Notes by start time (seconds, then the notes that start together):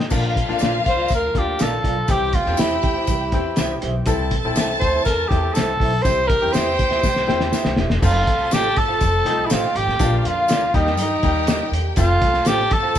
0.10 A#1 D3 F3 A#3 D4 F4 F5, kick, crash, tambourine
0.36 kick, closed hi-hat
0.49 A1 A#3 D4 F4, snare
0.59 A#1 F4 A#4 D5 F5, snare, closed hi-hat, tambourine
0.86 C2 C5, kick, closed hi-hat
0.97 F4 A#4 D5 F5
1.08 D2, kick, closed hi-hat, tambourine
1.15 A#4
1.35 D2 A#3 D4 F4 G4, kick, closed hi-hat
1.59 A#1 F4 A4 A#4 D5 F5, snare, closed hi-hat, tambourine
1.84 B1 F4 A#4 D5 F5, kick, closed hi-hat
2.08 C2 E3 G3 C4 E4 G4 G5, kick, closed hi-hat, tambourine
2.33 F4, kick, closed hi-hat
2.46 E2 C4 D4 G4, snare
2.53 E4
2.57 E2 E4 G4 C5 E5, snare, closed hi-hat, tambourine
2.83 D2, kick, closed hi-hat
2.96 E4 G4 C5 E5
3.07 C2, kick, closed hi-hat, tambourine
3.32 E2 C4 E4 G4, kick, closed hi-hat
3.56 C2 E4 G4 C5 E5, snare, closed hi-hat, tambourine
3.81 B1 E4 G4 C5 E5, closed hi-hat
4.06 C2 A3 C4 E4 A4 A5, kick, closed hi-hat, tambourine
4.31 kick, closed hi-hat
4.43 A#1 C4 E4 A4
4.55 C2 E4 A4 C5 E5, snare, closed hi-hat, tambourine
4.80 D2 C5, kick, closed hi-hat
4.92 E4 A4 C5 E5
5.05 E2 A#4, kick, closed hi-hat, tambourine
5.28 E2 C4 E4 G4 G#4, kick, closed hi-hat
5.37 A4
5.54 C2 E4 A4 C5 E5, snare, closed hi-hat, tambourine
5.80 B1 E4 A4 C5 E5, kick, open hi-hat
6.02 C2 E3 G3 C4 E4 G4 C5, kick, closed hi-hat, tambourine
6.07 G5
6.28 A#4, kick, closed hi-hat
6.42 E2 C4 E4 G4
6.53 E2 E4 G4 C5 E5, snare, closed hi-hat, tambourine
6.79 D2, kick, closed hi-hat
6.91 E4 G4 C5 E5, snare
7.03 C2, kick, snare, tambourine
7.16 snare
7.27 E2 C4 E4 G4, snare
7.40 snare
7.52 E4 G4 C5 E5, snare, tambourine
7.65 C2, snare
7.76 D#1 E4 G4 C5 E5, snare
7.90 E1, snare
8.00 F1 F3 A3 C4 F4 A4 A5, kick, crash, tambourine
8.27 C2, kick, closed hi-hat
8.51 A1 F4 G4 A4 C5 F5, snare, closed hi-hat, tambourine
8.76 G1 A4, kick, closed hi-hat
8.88 F4 A4 C5 F5
9.01 F1, kick, closed hi-hat, tambourine
9.25 C2 F3 A3 C4 D#4, closed hi-hat
9.46 E4 F4
9.50 A1 F4 G4 A4 C5 F5 G5, snare, closed hi-hat, tambourine
9.75 G#1 G4, closed hi-hat
9.87 A1, snare
9.99 A#1 D3 F3 A#3 D4 F4 F5, kick, closed hi-hat, tambourine
10.19 G4
10.25 F2 F4, closed hi-hat
10.48 D2 F4 A#4 D5 F5, snare, closed hi-hat, tambourine
10.73 D#2 D#3 G3 A#3 D#4 G4 G5, kick, closed hi-hat
10.85 D#4 G4 A#4 D#5, snare
10.97 G2 D#4, closed hi-hat, tambourine
11.23 D#2 G3 A#3 D#4 G4, kick, closed hi-hat
11.46 D#4 G4 A#4 D#5, snare, closed hi-hat, tambourine
11.71 E2, closed hi-hat
11.96 F1 F3 A3 C4 F4 A4 A5, kick, closed hi-hat, tambourine
12.22 C2, kick, closed hi-hat
12.34 snare
12.45 A1 F4 G4 A4 C5 F5, snare, closed hi-hat, tambourine
12.71 G1 A4, kick, closed hi-hat
12.83 F4 A4 C5 F5
12.95 closed hi-hat, tambourine